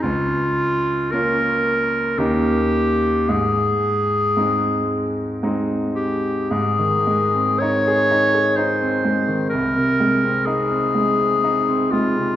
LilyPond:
<<
  \new Staff \with { instrumentName = "Clarinet" } { \time 3/4 \key aes \major \tempo 4 = 57 f'4 bes'4 g'4 | aes'2 r8 g'8 | aes'4 des''4 c''4 | bes'4 aes'4. f'8 | }
  \new Staff \with { instrumentName = "Grand piano" } { \time 3/4 \key aes \major des,4 <bes des' f'>4 <ees, bes des' ees'>4 | aes,4 <aes c' ees'>4 <aes c' ees'>4 | aes,16 ees16 aes16 c'16 ees'16 aes'16 ees'16 aes'16 ees'16 c'16 aes16 ees16 | c,16 c16 aes16 c'16 ees'16 c'16 aes16 c'16 ees'16 c'16 aes16 c16 | }
>>